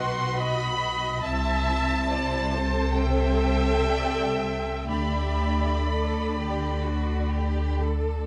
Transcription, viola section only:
0.00 0.38 B4 medium
0.38 0.79 D#5 medium
0.80 1.23 D#5 medium
1.23 2.11 E5 loud
2.11 2.55 D5 medium
2.54 2.99 C5 medium
2.99 4.90 E5 loud
4.91 8.27 D5 medium

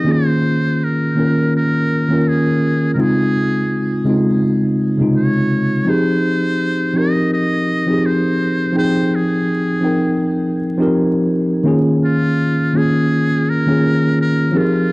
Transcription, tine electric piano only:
0.00 1.00 D#3 medium
0.00 0.11 F3 medium
0.00 0.11 C4 medium
0.00 0.11 D#4 medium
0.00 0.10 G4 medium
0.00 0.09 G#4 medium
0.00 0.11 A#4 medium
0.00 0.10 G5 medium
0.05 1.01 A#3 medium
0.05 1.01 C#4 medium
0.05 1.02 F4 medium
0.05 1.03 G#4 medium
1.15 1.92 D#3 medium
1.15 1.92 A#3 medium
1.15 1.93 C#4 medium
1.15 1.94 F4 medium
1.19 1.94 A#4 medium
2.08 2.84 D#3 medium
2.08 2.85 A#3 medium
2.08 2.85 C#4 medium
2.08 2.86 F4 medium
2.13 2.87 A#4 medium
2.95 3.90 C#3 medium
2.95 3.91 G#3 medium
2.95 3.91 C4 medium
2.95 3.92 D#4 medium
3.00 3.93 F4 medium
4.04 4.81 C#3 medium
4.04 4.82 G#3 medium
4.04 4.82 C4 medium
4.04 4.83 D#4 medium
4.09 4.83 F4 medium
4.97 5.75 C3 medium
4.97 5.73 C#3 medium
4.97 5.74 G#3 medium
4.97 5.75 D#4 medium
5.02 5.76 F4 medium
5.85 6.80 F3 medium
5.85 6.81 C4 medium
5.85 6.81 D#4 medium
5.85 6.82 G4 medium
5.90 6.82 G#4 medium
6.94 7.70 F3 medium
6.94 7.71 C4 medium
6.94 7.71 D#4 medium
6.94 7.72 G4 medium
6.98 7.73 A#4 medium
7.86 8.63 F3 medium
7.86 8.63 C4 medium
7.86 8.64 D#4 medium
7.86 8.64 G4 medium
7.91 8.65 G#4 medium
8.72 9.68 F3 medium
8.72 9.69 C4 medium
8.72 9.69 D#4 medium
8.72 9.70 G5 medium
8.77 9.71 G#4 medium
9.81 10.58 F3 medium
9.81 10.59 C4 medium
9.81 10.60 D#4 medium
9.81 10.60 G5 medium
9.85 10.61 A#4 medium
10.77 11.53 F3 medium
10.77 11.53 C4 medium
10.77 11.54 D#4 medium
10.77 11.54 G4 medium
10.82 11.55 A#4 medium
11.63 12.58 D#3 medium
11.63 12.59 A#3 medium
11.63 12.59 C#4 medium
11.63 12.60 F4 medium
11.68 12.60 G#4 loud
12.73 13.49 D#3 medium
12.73 13.49 A#3 medium
12.73 13.50 C#4 medium
12.73 13.51 F4 medium
12.77 13.51 G#4 medium
13.66 14.41 D#3 medium
13.66 14.42 A#3 medium
13.66 14.43 C#4 medium
13.66 14.43 F4 medium
13.71 14.44 G#4 medium
14.52 14.92 F3 medium
14.52 14.92 C4 medium
14.52 14.92 D#4 medium
14.52 14.92 G4 medium
14.52 14.92 G#4 medium
14.56 14.92 A#4 medium

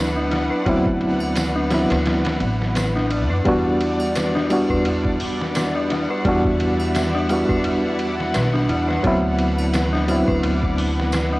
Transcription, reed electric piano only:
0.00 0.63 F#3 medium
0.00 0.64 B3 medium
0.00 0.64 C4 medium
0.00 0.65 E4 medium
0.66 1.67 F#3 medium
0.66 1.68 B3 medium
0.66 1.68 C4 medium
0.66 1.69 E4 loud
1.71 3.42 F#3 medium
1.71 3.42 B3 medium
1.71 3.43 C4 medium
1.71 3.43 E4 medium
3.45 4.46 G3 medium
3.45 4.47 B3 medium
3.45 4.47 D4 medium
3.45 4.48 F#4 loud
4.50 6.21 G3 medium
4.50 6.22 B3 medium
4.50 6.22 D4 medium
4.50 6.22 F#4 medium
6.25 7.26 G3 medium
6.25 7.27 B3 medium
6.25 7.27 D4 medium
6.25 7.28 F#4 loud
7.30 9.00 G3 medium
7.30 9.01 B3 medium
7.30 9.02 D4 medium
7.30 9.02 F#4 medium
9.03 10.05 F#3 loud
9.03 10.05 B3 medium
9.03 10.06 C4 medium
9.03 10.06 E4 loud
10.08 11.39 F#3 medium
10.08 11.39 B3 medium
10.08 11.39 C4 medium
10.08 11.39 E4 medium

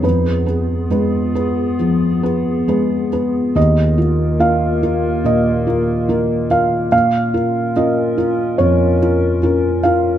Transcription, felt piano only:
0.02 0.45 F2 soft
0.02 0.45 B4 soft
0.46 0.87 G#4 soft
0.46 0.87 B4 soft
0.90 1.31 G#3 soft
0.90 1.31 G#4 soft
0.90 1.31 B4 soft
1.35 1.75 G#4 soft
1.35 1.76 B4 soft
1.80 2.22 F3 soft
2.23 2.64 G#4 soft
2.23 2.64 B4 soft
2.68 3.08 G#3 soft
2.68 3.08 G#4 soft
2.68 3.09 B4 soft
3.12 3.52 G#4 soft
3.12 3.52 B4 soft
3.55 3.97 D#2 soft
3.55 4.38 D#5 medium
3.98 4.37 F4 soft
3.98 4.37 A#4 soft
4.39 4.79 A#3 soft
4.39 4.79 F4 soft
4.39 4.79 A#4 soft
4.39 5.21 F5 medium
4.83 5.21 F4 soft
4.83 5.21 A#4 soft
5.24 5.66 A#2 soft
5.24 6.47 D#5 medium
5.67 6.05 F4 soft
5.67 6.05 A#4 soft
6.09 6.47 A#3 soft
6.09 6.47 F4 soft
6.09 6.47 A#4 soft
6.50 6.88 F4 soft
6.50 6.88 A#4 soft
6.50 6.90 F5 medium
6.92 7.33 A#2 soft
6.92 7.72 F5 medium
7.34 7.72 F4 soft
7.34 7.72 A#4 soft
7.76 8.14 C#4 soft
7.76 8.14 F4 soft
7.76 8.14 A#4 soft
7.76 8.55 D#5 medium
8.18 8.55 F4 soft
8.18 8.55 A#4 soft
8.58 8.99 F2 soft
8.58 9.79 C#5 medium
9.02 9.39 F4 soft
9.02 9.39 A#4 soft
9.43 9.80 C#4 soft
9.43 9.80 F4 soft
9.43 9.80 A#4 soft
9.83 10.18 F4 soft
9.83 10.18 A#4 soft
9.83 10.18 F5 medium

